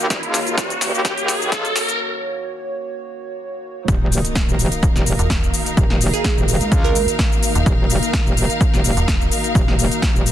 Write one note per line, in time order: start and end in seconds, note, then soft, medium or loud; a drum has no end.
0.00 3.84 D#3 medium
0.00 3.84 A#3 medium
0.00 1.99 D#4 medium
0.00 3.84 F#4 medium
0.00 1.99 A#4 medium
0.00 1.99 F5 medium
0.00 riser medium
0.00 shaker soft
0.10 0.21 D#1 loud
0.10 3.87 C#5 medium
0.10 kick loud
0.10 snare medium
0.10 closed hi-hat medium
0.10 shaker soft
0.23 0.56 C#2 loud
0.23 closed hi-hat medium
0.34 snare medium
0.34 open hi-hat loud
0.34 shaker medium
0.47 closed hi-hat soft
0.47 shaker soft
0.58 0.92 D#1 loud
0.58 kick loud
0.58 snare medium
0.58 closed hi-hat medium
0.58 shaker soft
0.70 closed hi-hat medium
0.70 shaker soft
0.81 snare medium
0.81 open hi-hat medium
0.81 shaker medium
0.94 1.15 D#2 loud
0.94 shaker soft
1.05 kick loud
1.05 snare medium
1.05 closed hi-hat medium
1.05 shaker soft
1.18 1.50 D#2 loud
1.18 closed hi-hat medium
1.18 shaker soft
1.28 snare medium
1.28 open hi-hat loud
1.28 shaker medium
1.42 shaker soft
1.52 1.74 C#2 medium
1.52 kick loud
1.52 snare medium
1.52 closed hi-hat medium
1.52 shaker soft
1.65 closed hi-hat medium
1.65 shaker soft
1.76 snare medium
1.76 open hi-hat loud
1.76 shaker medium
1.88 closed hi-hat soft
1.88 shaker soft
3.88 4.23 D#1 loud
3.88 10.32 D#3 medium
3.88 10.32 A#3 medium
3.88 10.32 D#4 medium
3.88 10.32 F#4 medium
3.88 10.32 A#4 medium
3.88 kick loud
3.88 closed hi-hat medium
3.88 impact medium
3.88 shaker soft
4.12 open hi-hat loud
4.12 shaker medium
4.25 closed hi-hat medium
4.25 shaker soft
4.30 10.32 A#4 medium
4.35 kick loud
4.35 snare loud
4.35 closed hi-hat medium
4.35 shaker soft
4.48 4.70 D#1 loud
4.48 10.32 F5 medium
4.48 shaker soft
4.59 open hi-hat loud
4.59 shaker medium
4.72 closed hi-hat medium
4.72 shaker soft
4.83 kick loud
4.83 closed hi-hat medium
4.83 shaker soft
4.96 5.05 D#1 loud
4.96 snare soft
4.96 shaker soft
5.06 5.17 D#1 loud
5.06 open hi-hat loud
5.06 shaker medium
5.19 5.52 D#1 loud
5.19 closed hi-hat medium
5.19 shaker soft
5.30 kick loud
5.30 snare loud
5.30 closed hi-hat medium
5.30 shaker soft
5.43 shaker soft
5.54 open hi-hat loud
5.54 shaker medium
5.66 closed hi-hat medium
5.66 shaker soft
5.77 6.12 D#1 loud
5.77 kick loud
5.77 closed hi-hat medium
5.77 shaker soft
5.90 snare soft
6.01 open hi-hat loud
6.01 shaker medium
6.14 6.21 G#4 medium
6.14 closed hi-hat medium
6.14 shaker soft
6.24 6.33 G#4 medium
6.24 kick loud
6.24 snare loud
6.24 closed hi-hat medium
6.24 shaker soft
6.37 6.59 D#1 loud
6.37 shaker soft
6.48 open hi-hat loud
6.48 shaker medium
6.61 7.06 C#2 medium
6.61 closed hi-hat medium
6.61 shaker soft
6.72 kick loud
6.72 closed hi-hat medium
6.72 shaker soft
6.84 7.50 A#4 medium
6.84 shaker soft
6.95 open hi-hat loud
6.95 shaker medium
7.08 closed hi-hat medium
7.08 shaker soft
7.19 kick loud
7.19 snare loud
7.19 closed hi-hat medium
7.19 shaker soft
7.32 shaker soft
7.43 open hi-hat loud
7.43 shaker medium
7.55 7.64 D#1 loud
7.55 closed hi-hat medium
7.55 shaker soft
7.66 8.01 D#1 loud
7.66 kick loud
7.66 closed hi-hat soft
7.66 shaker soft
7.90 open hi-hat loud
7.90 shaker medium
8.03 closed hi-hat medium
8.03 shaker soft
8.13 kick loud
8.13 snare loud
8.13 closed hi-hat medium
8.13 shaker soft
8.26 8.48 D#1 loud
8.26 shaker soft
8.37 open hi-hat loud
8.37 shaker medium
8.50 closed hi-hat medium
8.50 shaker soft
8.61 kick loud
8.61 closed hi-hat soft
8.61 shaker soft
8.73 8.83 D#1 loud
8.73 snare soft
8.73 shaker soft
8.84 8.95 D#1 loud
8.84 open hi-hat loud
8.84 shaker medium
8.97 9.30 D#1 loud
8.97 closed hi-hat medium
8.97 shaker soft
9.08 kick loud
9.08 snare loud
9.08 closed hi-hat medium
9.08 shaker soft
9.21 shaker soft
9.31 open hi-hat loud
9.31 shaker medium
9.44 closed hi-hat medium
9.44 shaker soft
9.55 9.90 D#1 loud
9.55 kick loud
9.55 closed hi-hat soft
9.55 shaker soft
9.68 snare soft
9.79 open hi-hat loud
9.79 shaker medium
9.92 closed hi-hat medium
9.92 shaker soft
10.02 kick loud
10.02 snare loud
10.02 closed hi-hat soft
10.02 shaker soft
10.15 10.32 D#1 loud
10.15 shaker soft
10.26 open hi-hat loud
10.26 shaker medium